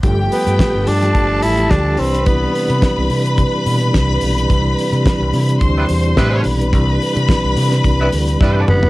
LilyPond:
<<
  \new Staff \with { instrumentName = "String section" } { \time 4/4 \key c \major \tempo 4 = 108 <g' g''>4. <a' a''>2 <b' b''>8~ | <b' b''>1~ | <b' b''>2 <c'' c'''>4. <b' b''>8~ | <b' b''>1 | }
  \new Staff \with { instrumentName = "Horn section" } { \time 4/4 \key c \major r1 | r1 | r2 r16 <g b e' b'>16 r8 <g b e' b'>8 r8 | r2 r16 <g b e' b'>16 r8 <g b e' b'>8 r8 | }
  \new Staff \with { instrumentName = "Tenor saxophone" } { \time 4/4 \key c \major r8 b4 d'4 e'8 d'8 c'8 | b4. r2 r8 | r1 | r2. r8 b8 | }
  \new Staff \with { instrumentName = "Tonewheel organ" } { \clef bass \time 4/4 \key c \major << { <f a g'>2.~ <f a g'>8 <c e d'>8~ | <c e d'>1~ | <c e d'>1~ | <c e d'>1 | } \\ { g1~ | g1~ | g1~ | g1 | } >> }
  \new Staff \with { instrumentName = "Fingered electric bass" } { \clef bass \time 4/4 \key c \major g,,8 r16 g,16 r16 g,,16 g,8 g,,8 a,,8 d,8 c,8~ | c,8 r16 c16 r16 c,16 c8. r16 b,8 c,8 b,,8 | c,8 r16 c16 r16 c,16 c8 d,8 e,8 a,8 b,,8 | c,8 r16 c16 r16 c,16 c8 c,8 d,8 g,8 fis,,8 | }
  \new DrumStaff \with { instrumentName = "Drums" } \drummode { \time 4/4 <hh bd>8 hho16 hh16 <hh bd sn>8 hho16 <hh sn>16 <hh bd>8 hho16 hh16 <hh bd sn>8 hho16 hh16 | <hh bd>8 hho16 hh16 <hh bd sn>8 hho16 hh16 <hh bd>8 hho16 hh16 <hh bd sn>8 hho16 hh16 | <hh bd>8 hho16 hh16 <hh bd sn>8 hho16 hh16 <hh bd>8 hho16 hh16 <hh bd sn>8 hho16 hh16 | <hh bd>8 hho16 hh16 <hh bd sn>8 hho16 <hh sn>16 <hh bd>8 hho16 hh16 <bd sn>8 toml16 tomfh16 | }
>>